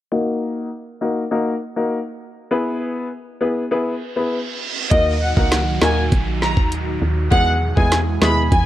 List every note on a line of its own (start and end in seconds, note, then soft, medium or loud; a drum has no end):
0.11 0.67 A#3 medium
0.11 0.67 D#4 medium
0.11 0.67 F#4 medium
0.11 0.67 A#4 medium
1.01 1.22 A#3 medium
1.01 1.22 D#4 medium
1.01 1.22 F#4 medium
1.01 1.22 A#4 medium
1.31 1.52 A#3 medium
1.31 1.52 D#4 medium
1.31 1.52 F#4 medium
1.31 1.52 A#4 medium
1.76 1.97 A#3 medium
1.76 1.97 D#4 medium
1.76 1.97 F#4 medium
1.76 1.97 A#4 medium
2.51 3.07 B3 medium
2.51 3.07 E4 medium
2.51 3.07 G#4 medium
2.51 3.07 B4 loud
3.41 3.62 B3 medium
3.41 3.62 E4 medium
3.41 3.62 G#4 medium
3.41 3.62 B4 medium
3.71 3.92 B3 medium
3.71 3.92 E4 medium
3.71 3.92 G#4 medium
3.71 3.92 B4 medium
3.71 reverse cymbal medium
4.16 4.37 B3 medium
4.16 4.37 E4 medium
4.16 4.37 G#4 medium
4.16 4.37 B4 medium
4.91 5.33 D#2 loud
4.91 7.29 A#2 medium
4.91 7.29 D#3 medium
4.91 7.29 F#3 medium
4.91 5.12 A#3 medium
4.91 5.12 D#4 medium
4.91 7.29 D#4 medium
4.91 5.12 F#4 medium
4.91 7.29 F#4 medium
4.91 5.12 A#4 loud
4.91 5.04 D#5 loud
4.91 kick loud
4.91 closed hi-hat medium
4.91 downlifter medium
5.22 5.33 F#5 medium
5.36 5.78 C#2 medium
5.36 5.57 A#3 medium
5.36 5.57 D#4 medium
5.36 5.57 F#4 medium
5.36 5.57 A#4 medium
5.36 5.49 F#5 medium
5.36 kick medium
5.52 finger snap medium
5.52 snare loud
5.52 closed hi-hat medium
5.81 6.09 D#2 loud
5.81 6.02 A#3 medium
5.81 6.02 D#4 medium
5.81 6.02 F#4 medium
5.81 6.02 A#4 medium
5.81 5.94 G#5 medium
5.81 finger snap medium
5.81 snare loud
6.12 6.58 A#1 loud
6.12 kick loud
6.12 closed hi-hat medium
6.42 6.54 A#5 medium
6.42 snare medium
6.57 6.98 D#2 medium
6.57 kick medium
6.72 closed hi-hat medium
7.02 7.29 D#2 loud
7.31 7.73 E2 loud
7.31 8.66 B2 medium
7.31 7.52 G#3 medium
7.31 8.66 G#3 medium
7.31 7.52 B3 medium
7.31 7.52 E4 medium
7.31 8.66 E4 medium
7.31 8.66 G#4 medium
7.31 7.52 G#4 loud
7.31 7.43 F#5 loud
7.31 kick loud
7.31 closed hi-hat medium
7.76 8.18 E2 medium
7.76 7.97 G#3 medium
7.76 7.97 B3 medium
7.76 7.97 E4 medium
7.76 7.97 G#4 medium
7.76 7.88 G#5 medium
7.76 kick medium
7.92 finger snap medium
7.92 snare loud
7.92 closed hi-hat medium
8.21 8.49 D#2 loud
8.21 8.42 G#3 medium
8.21 8.42 B3 medium
8.21 8.42 E4 medium
8.21 8.42 G#4 medium
8.21 8.34 B5 medium
8.21 finger snap medium
8.21 snare loud
8.52 8.66 E2 loud
8.52 8.63 G#5 medium
8.52 kick loud
8.52 closed hi-hat medium